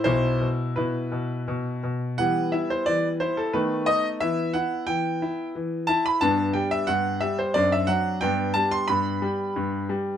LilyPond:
<<
  \new Staff \with { instrumentName = "Grand piano" } { \time 3/4 \key e \minor \tempo 4 = 89 <e' c''>4 <e' b'>4. r8 | fis''8 e''16 c''16 d''8 c''16 a'16 b'8 dis''8 | e''8 fis''8 g''4. a''16 b''16 | a''8 g''16 e''16 fis''8 e''16 c''16 d''16 e''16 fis''8 |
g''8 a''16 c'''16 b''4. r8 | }
  \new Staff \with { instrumentName = "Grand piano" } { \clef bass \time 3/4 \key e \minor << { r2. | <g b>2 <a b>4 | <b e'>2. | <b d'>2 <c' d'>4 |
<b d'>2. | } \\ { <b,, b,>8 b,8 b,8 b,8 b,8 b,8 | e8 e'8 e8 e'8 dis8 dis'8 | e8 e'8 e8 e'8 e8 e'8 | g,8 g8 g,8 g8 fis,8 fis8 |
g,8 g8 g,8 g8 g,8 g8 | } >> }
>>